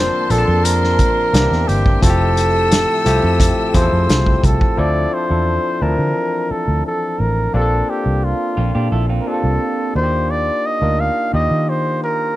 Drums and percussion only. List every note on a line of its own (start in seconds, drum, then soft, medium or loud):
0.30 closed hi-hat medium
0.65 closed hi-hat loud
0.84 snare soft
0.99 kick medium
0.99 closed hi-hat medium
1.34 snare loud
1.34 closed hi-hat medium
1.53 snare soft
1.69 closed hi-hat medium
1.86 kick medium
2.03 kick medium
2.03 closed hi-hat medium
2.37 closed hi-hat medium
2.71 snare loud
2.71 closed hi-hat medium
3.06 closed hi-hat medium
3.40 kick loud
3.40 closed hi-hat loud
3.74 kick medium
3.74 closed hi-hat medium
4.09 snare loud
4.09 closed hi-hat medium
4.26 kick medium
4.44 kick loud
4.44 closed hi-hat medium
4.61 kick medium